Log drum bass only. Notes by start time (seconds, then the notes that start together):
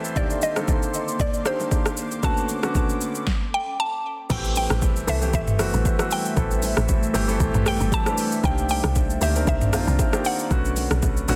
4.30 A1
4.70 A1
5.08 C2
5.34 A1
5.48 G1
5.74 A1
6.37 A1
6.77 A1
7.15 G1
7.40 A1
7.55 A1
7.80 G1
8.44 C2
8.84 C2
9.21 D2
9.47 C2
9.62 A#1
9.88 C2
10.51 B1
10.91 B1
11.28 A1